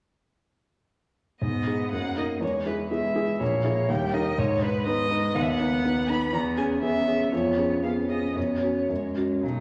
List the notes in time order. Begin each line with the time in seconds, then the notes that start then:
1.41 G#2 B3 D#5
1.67 D#4 G#4
1.92 F#2 A#3 F#5
2.17 D#4 A#4 D#5
2.41 E2 G#3 C#5
2.66 E4 G#4 B4
2.91 G#3 B3 E4 G#4 E5
3.15 E4 G#4
3.40 A#1 A#3 C#5
3.64 E4 G#4
3.89 D#2 G3 G5
4.13 D#4 A#4 D#5
4.38 G#2 G#3 C#5
4.62 D#4 B4
4.86 G#3 B3 D#4 B4 D#5
5.11 D#4 B4
5.35 D#2 B3 F#5
5.42 E5
5.49 F#5
5.60 D#4 B4
5.85 B3 D#4 B4
6.09 D#4 B4 B5
6.33 E2 B3 A#5
6.57 C#4 G#4 G#5
6.82 B3 C#4 G#4 E5
7.07 C#4 G#4
7.32 F2 B3 C#5
7.57 C#4 G#4
7.83 B3 C#4 G#4 F5
8.09 C#4 G#4 D#5
8.35 F#2 B3 C#5
8.63 C#4 F#4
8.89 F#2 G#3
9.17 C#4 F#4
9.42 B1 F#3 D#4